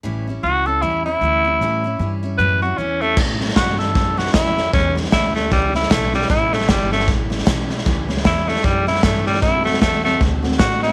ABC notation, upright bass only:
X:1
M:4/4
L:1/8
Q:"Swing" 1/4=153
K:Amix
V:1 name="Upright bass" clef=bass
A,,,2 C,,2 E,,2 D,,2 | A,,2 G,,2 F,,2 E,,2 | A,,2 G,,2 F,,2 =F,,2 | E,,2 D,,2 C,,2 B,,,2 |
A,,,2 G,,,2 A,,,2 B,,,2 | C,,2 E,,2 F,,2 G,,2 | F,,2 E,,2 D,,2 A,,2 |]